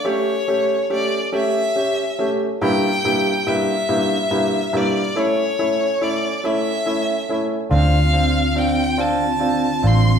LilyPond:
<<
  \new Staff \with { instrumentName = "Violin" } { \time 6/8 \key a \phrygian \tempo 4. = 47 cis''4 d''8 e''4 r8 | g''4 e''4. d''8 | cis''4 d''8 e''4 r8 | f''4 g''8 a''4 c'''8 | }
  \new Staff \with { instrumentName = "Upright piano" } { \time 6/8 \key a \phrygian <a cis' g'>8 <a cis' g'>8 <a cis' g'>8 <a cis' g'>8 <cis' g'>8 <a cis' g'>8 | <g, bes e' g'>8 <g, bes e' g'>8 <g, bes e' g'>8 <g, bes e' g'>8 <g, bes e' g'>8 <g, bes e' g'>8 | <a cis' e'>8 <a cis' e'>8 <a cis' e'>8 <a cis' e'>8 <a cis' e'>8 <a cis' e'>8 | <c' d' f'>8 <c' d' f'>8 <c' d' f'>8 <c' d' f'>8 <c' d' f'>8 <c' d' f'>8 | }
  \new Staff \with { instrumentName = "Tonewheel organ" } { \time 6/8 \key a \phrygian r2. | r2. | r2. | <d c' f'>2. | }
  \new Staff \with { instrumentName = "Fingered electric bass" } { \clef bass \time 6/8 \key a \phrygian r2. | r2. | r2. | d,2~ d,8 a,,8 | }
>>